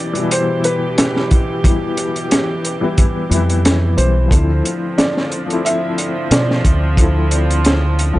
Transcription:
0.00 4.27 B2 medium
0.00 0.10 E3 medium
0.00 4.27 E3 medium
0.00 0.11 G3 medium
0.00 0.12 B3 medium
0.00 0.13 E4 medium
0.00 4.27 G4 medium
0.00 0.33 D5 medium
0.13 1.59 E3 loud
0.13 1.61 G3 medium
0.13 closed hi-hat soft
0.18 1.62 B2 medium
0.18 1.63 E4 medium
0.31 0.66 C5 medium
0.31 closed hi-hat loud
0.64 1.27 B4 loud
0.64 closed hi-hat medium
0.98 snare loud
0.98 closed hi-hat loud
1.16 snare medium
1.31 kick loud
1.31 closed hi-hat medium
1.62 2.77 E3 medium
1.62 2.78 G3 medium
1.62 kick loud
1.62 closed hi-hat medium
1.66 2.79 B3 medium
1.66 2.80 E4 medium
1.97 closed hi-hat medium
2.16 closed hi-hat soft
2.31 snare loud
2.31 closed hi-hat medium
2.65 closed hi-hat medium
2.81 3.27 E3 medium
2.81 3.28 G3 medium
2.81 3.28 B3 medium
2.81 3.29 E4 loud
2.98 kick loud
2.98 closed hi-hat medium
3.30 3.95 F2 medium
3.30 3.61 E3 medium
3.30 3.62 G3 medium
3.30 3.62 B3 medium
3.30 3.63 E4 loud
3.30 closed hi-hat medium
3.49 closed hi-hat soft
3.65 snare loud
3.65 closed hi-hat medium
3.97 4.27 B1 medium
3.97 4.27 E3 medium
3.97 4.27 G3 medium
3.97 4.28 B3 medium
3.97 4.28 E4 medium
3.97 4.94 C5 medium
3.97 closed hi-hat medium
4.28 4.61 D2 medium
4.28 8.19 D3 medium
4.28 5.43 F3 medium
4.28 8.19 F3 loud
4.28 5.44 A3 medium
4.28 8.19 C4 medium
4.28 kick loud
4.32 5.45 C4 medium
4.32 5.46 E4 medium
4.32 closed hi-hat medium
4.65 closed hi-hat medium
4.98 5.66 D5 medium
4.98 snare loud
4.98 closed hi-hat medium
5.17 snare medium
5.32 closed hi-hat medium
5.46 6.92 F3 medium
5.46 6.93 A3 medium
5.50 6.94 C4 medium
5.50 6.95 E4 loud
5.50 closed hi-hat soft
5.65 6.27 E5 loud
5.65 closed hi-hat medium
5.98 closed hi-hat medium
6.31 6.61 B2 medium
6.31 6.79 D5 medium
6.31 snare loud
6.31 closed hi-hat loud
6.51 snare medium
6.65 8.13 D2 medium
6.65 kick medium
6.65 closed hi-hat medium
6.96 8.11 F3 medium
6.96 8.12 A3 medium
6.96 kick loud
6.96 closed hi-hat medium
7.00 8.13 C4 medium
7.00 8.14 E4 medium
7.31 closed hi-hat medium
7.50 closed hi-hat soft
7.65 snare loud
7.65 closed hi-hat medium
7.99 closed hi-hat medium
8.13 8.19 D2 medium
8.13 8.19 F3 medium
8.13 8.19 A3 medium

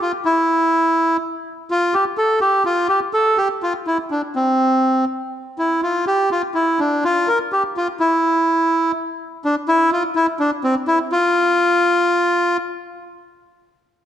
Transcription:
0.01 0.12 F4 medium
0.25 1.17 E4 medium
1.71 1.94 F4 loud
1.94 2.04 G4 loud
2.18 2.39 A4 loud
2.41 2.63 G4 loud
2.65 2.87 F4 loud
2.89 3.00 G4 loud
3.13 3.38 A4 loud
3.37 3.48 G4 loud
3.63 3.73 F4 medium
3.87 3.98 E4 medium
4.11 4.22 D4 medium
4.36 5.05 C4 medium
5.59 5.81 E4 medium
5.83 6.05 F4 medium
6.07 6.29 G4 medium
6.31 6.42 F4 medium
6.54 6.80 E4 medium
6.79 7.04 D4 medium
7.04 7.29 F4 loud
7.28 7.38 A#4 loud
7.52 7.63 G4 medium
7.77 7.88 F4 medium
8.00 8.92 E4 medium
9.45 9.55 D4 medium
9.68 9.90 E4 loud
9.92 10.03 F4 loud
10.15 10.26 E4 loud
10.40 10.51 D4 loud
10.64 10.75 C4 loud
10.88 10.99 E4 loud
11.12 12.57 F4 loud

